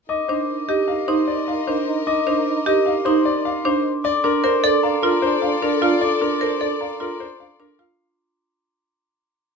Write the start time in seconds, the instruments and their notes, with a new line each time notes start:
0.09 french horn D#4, string section A#4 D#5, grand piano D#5, glockenspiel D6
0.28 marimba D4, french horn D#4, grand piano C5
0.49 french horn D#4
0.68 french horn D#4, marimba G4, grand piano D#5
0.88 french horn D#4, grand piano F5
1.08 marimba D#4, french horn D#4, grand piano C5, glockenspiel C6
1.27 french horn D#4, grand piano D5
1.47 french horn D#4, grand piano F5
1.67 marimba D4, french horn D#4, grand piano C5
1.87 french horn D#4
2.07 french horn D#4, grand piano D#5, glockenspiel D6
2.27 marimba D4, french horn D#4, grand piano C5
2.47 french horn D#4
2.66 french horn D#4, marimba G4, grand piano D#5
2.86 french horn D#4, grand piano F5
3.05 marimba D#4, french horn D#4, grand piano C5, glockenspiel C6
3.25 french horn D#4, grand piano D5
3.45 french horn D#4, grand piano F5
3.65 marimba D4, french horn D#4, grand piano C5
4.04 french horn D4, string section A4 D5, grand piano D5, glockenspiel D6
4.24 marimba D4, french horn D4, grand piano A#4, glockenspiel C6
4.43 french horn D4, marimba A#4, grand piano C5
4.63 french horn D4, marimba A4, grand piano D5
4.83 french horn D4, grand piano F5, glockenspiel A#5
5.03 french horn D4, marimba F4, grand piano A#4, glockenspiel C6
5.22 french horn D4, grand piano C5
5.42 french horn D4, grand piano F5
5.62 french horn D4, marimba D4, grand piano A#4
5.82 french horn D4, marimba F4, grand piano F5
6.01 french horn D4, grand piano D5, glockenspiel D6
6.21 french horn D4, marimba D4, grand piano A#4, glockenspiel C6
6.41 french horn D4, marimba A#4, grand piano C5
6.61 french horn D4, marimba A4, grand piano D5
6.80 french horn D4, grand piano F5, glockenspiel A#5
7.00 french horn D4, marimba F4, grand piano A#4, glockenspiel C6
7.20 french horn D4, grand piano C5
7.39 french horn D4, grand piano F5
7.59 french horn D4, marimba D4, grand piano A#4
7.79 marimba F4, grand piano F5